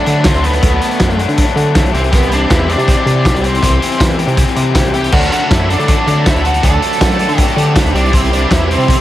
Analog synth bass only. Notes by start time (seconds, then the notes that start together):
0.07 D3
0.34 D2
0.63 D2
1.00 F#2
1.28 D3
1.56 D3
1.84 B1
1.94 C2
2.50 E2
2.78 C3
3.06 C3
3.34 C2
3.63 C2
4.01 E2
4.27 C3
4.56 C3
4.85 C2
5.13 D2
5.51 F#2
5.79 D3
6.07 D3
6.35 D2
6.64 D2
7.01 F#2
7.29 D3
7.56 D3
7.85 D2
7.93 C2
8.51 E2
8.78 C3